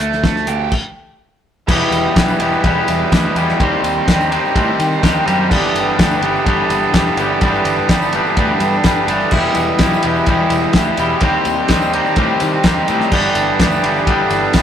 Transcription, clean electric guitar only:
0.00 D3 A3
0.25 D3 A3
0.49 D3 A3
1.68 E2 B2 E3 G3 B3 G4
2.15 E2 B2 E3 G3 B3 G4
2.40 E2 B2 E3 G3 B3 G4
2.63 E2 B2 E3 G3 B3 G4
3.11 E2 B2 E3 G3 B3 G4
3.36 E2 B2 E3 G3 B3 G4
3.60 D#3 G3 C4 D4 G4
4.07 D#3 G3 C4 D4 G4
4.31 D#3 G3 C4 D4 G4
4.54 D#3 G3 C4 D4 G4
5.02 D#3 G3 C4 D4 G4
5.25 D#3 G3 C4 D4 G4
5.50 G2 D3 E3 G3 B3 G4
5.98 G2 D3 E3 G3 B3 G4
6.22 G2 D3 E3 G3 B3 G4
6.46 G2 D3 E3 G3 B3 G4
6.93 G2 D3 E3 G3 B3 G4
7.18 G2 D3 E3 G3 B3 G4
7.42 G2 D3 E3 G3 B3 G4
7.89 G2 D3 E3 G3 B3 G4
8.13 G2 D3 E3 G3 B3 G4
8.36 G2 D3 E3 G3 B3 G4
8.84 G2 D3 E3 G3 B3 G4
9.07 G2 D3 E3 G3 B3 G4
9.31 E2 B2 E3 G3 E4 G4
9.79 E2 B2 E3 G3 E4 G4
10.03 E2 B2 E3 G3 E4 G4
10.26 E2 B2 E3 G3 E4 G4
10.74 E2 B2 E3 G3 E4 G4
10.98 E2 B2 E3 G3 E4 G4
11.21 D#3 G3 C4 D4 G4
11.69 D#3 G3 C4 D4 G4
11.93 D#3 G3 C4 D4 G4
12.17 D#3 G3 C4 D4 G4
12.64 D#3 G3 C4 D4 G4
12.88 D#3 G3 C4 D4 G4
13.11 G2 D3 E3 G3 B3 G4
13.59 G2 D3 E3 G3 B3 G4
13.83 G2 D3 E3 G3 B3 G4
14.06 G2 D3 E3 G3 B3 G4
14.54 G2 D3 E3 G3 B3 G4

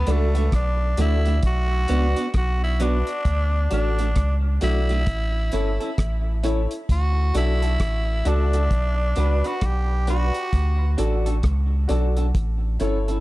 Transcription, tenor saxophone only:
Already playing: B3
0.11 A3
0.55 D4
1.01 E4
1.46 F#4
2.38 F#4
2.64 E4
2.82 D4
3.73 D4
4.64 E4
6.92 F#4
7.37 E4
8.28 D4
9.47 F#4
9.66 G4
10.10 F#4

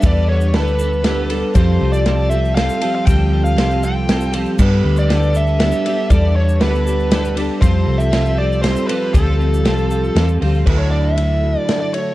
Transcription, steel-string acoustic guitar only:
0.01 G3 D4 A4 B4
0.53 G3 D4 A4 B4
0.78 A4 B4
0.82 D4
1.02 G3 D4 A4
1.06 B4
1.28 A4 B4
1.32 D4
1.54 F3 G3 C4 G4 A4
2.05 G3 C4 G4 A4
2.30 C4 G4 A4
2.55 G3 C4 G4 A4
2.81 C4 G4 A4
3.06 F3 G3 C4 G4 A4
3.56 G3 C4 G4 A4
3.83 C4 G4 A4
4.07 G3 C4 G4 A4
4.32 C4 G4 A4
4.58 G3 B3 D4 G4 A4
5.10 B3 D4 G4 A4
5.61 B3 D4 G4 A4
5.85 D4 G4 A4
6.10 G3 B3 D4 G4 A4
6.59 B3 D4 G4 A4
6.85 D4 G4 A4
7.11 B3 D4 G4 A4
7.35 D4 G4 A4
7.60 F3 G3 C4 G4 A4
8.10 G3 C4 G4 A4
8.36 C4 G4 A4
8.61 G3 C4 G4
8.65 A4
8.87 C4 G4 A4
9.13 F3 G3 C4 G4 A4
9.65 G3 C4 G4 A4
10.15 G3 C4 G4
10.19 A4
10.41 C4 G4 A4
10.67 D3 A3 E4 F#4 A4
11.16 A3 E4 F#4 A4
11.41 E4 F#4 A4
11.67 A3 E4 F#4 A4
11.93 E4 F#4 A4

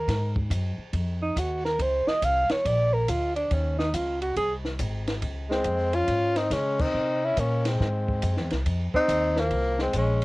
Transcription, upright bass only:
0.08 G#2
0.50 F#2
0.78 muted upright bass stroke
0.93 F2
1.36 D#2
1.79 C#2
2.07 muted upright bass stroke
2.22 C2
2.65 A#1
3.08 D2
3.51 D#2
3.94 C#2
4.36 C2
4.79 G#1
5.22 C#2
5.65 F2
6.08 G#2
6.50 C#3
6.94 C3
7.37 A#2
7.80 G#2
8.23 F#2
8.38 E2
8.52 C2
8.66 F2
8.94 muted upright bass stroke
9.08 D#2
9.51 C2
9.94 A#1

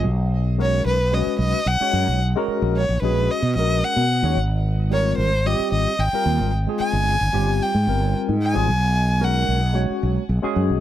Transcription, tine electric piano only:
0.58 G#3 C#4 F#4 A#4
1.11 G#3 C#4 F#4 B4
1.80 G#3 C#4 F#4 C#5
2.36 G#3 C#4 F#4 A#4
3.03 G#3 C#4 F#4 G#4
3.57 G#3 C#4 F#4 A#4
4.24 G#3 C#4 F#4 C#5
4.90 G3 C4 F4 A#4
5.45 G3 C4 F4 G4
6.13 G3 C4 F4 A#4
6.67 G#3 C4 F4 G#4
7.33 G3 C4 F4 G4
7.87 G3 C4 F4 A#4
8.53 G3 C4 F4 G#4
9.20 G#3 C#4 F#4 A#4
9.73 G#3 C#4 F#4 C#5
10.42 G#3 C#4 F#4 G#4

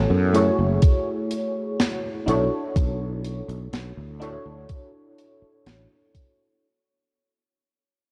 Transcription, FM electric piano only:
Already playing: B3 E4 F#4 A4 C#5
0.33 A3 E4 F#4 G#4 C#5
2.26 D4 E4 F#4 A4 C#5
4.20 D4 E4 F#4 A4 C#5

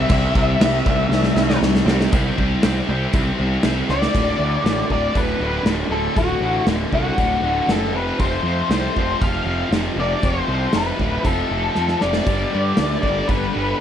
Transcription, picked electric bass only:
0.09 C2
0.35 C2
0.60 C2
0.86 C2
1.09 C2
1.35 C2
1.61 C2
1.85 C2
2.13 C2
2.37 C2
2.64 C2
2.89 C2
3.14 C2
3.40 C2
3.64 C2
3.89 C#2
4.14 D1
4.39 D2
4.64 A1
4.90 D1
5.15 D1
5.40 D1
5.65 D1
5.89 D1
6.17 D1
6.41 A1
6.66 D1
6.92 C2
7.18 D1
7.42 D1
7.68 F#1
7.92 F1
8.19 F1
8.43 F2
8.69 C2
8.97 F1
9.21 F1
9.45 F1
9.71 F1
9.96 F1
10.23 F1
10.48 C2
10.74 F1
10.99 D1
11.24 F1
11.51 F1
11.77 F2
12.03 F1
12.27 G1
12.55 G2
12.79 D2
13.03 G1
13.28 G1
13.56 G1

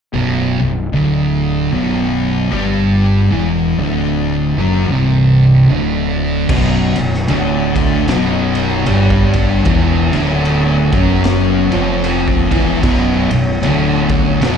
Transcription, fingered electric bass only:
0.14 B0
0.61 B0
0.93 D1
1.72 B0
2.52 G1
3.30 E1
3.78 D1
4.57 F#1
4.89 C1
5.69 D1
6.50 B0
6.96 B0
7.29 D1
8.08 B0
8.87 G1
9.66 E1
10.13 D1
10.93 F#1
11.73 F1
12.52 E1
12.84 B0
13.31 B0
13.62 D1
14.42 B0

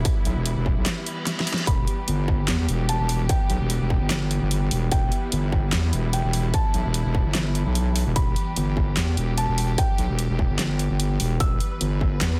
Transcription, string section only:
Already playing: E3 G3 B3 E4
1.67 G4
4.92 E4
8.16 G4
11.40 B4

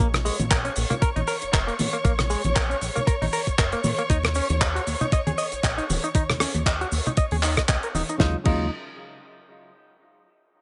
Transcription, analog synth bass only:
0.00 A#1
0.40 A#1
0.77 A#1
1.02 A#1
1.16 A#1
1.42 F1
1.53 F1
1.79 A#2
2.05 A#1
2.44 A#1
2.82 A#1
3.22 A#1
3.47 F1
3.59 F1
3.84 A#2
4.10 D#2
4.50 D#2
4.87 D#2
5.12 D#2
5.27 D#2
5.52 A#1
5.64 A#1
5.89 D#1
6.15 D#2
6.55 D#2
6.92 D#2
7.32 D#2
7.57 C#2
7.69 C#2
7.94 D#1
8.20 D#2
8.46 D#2

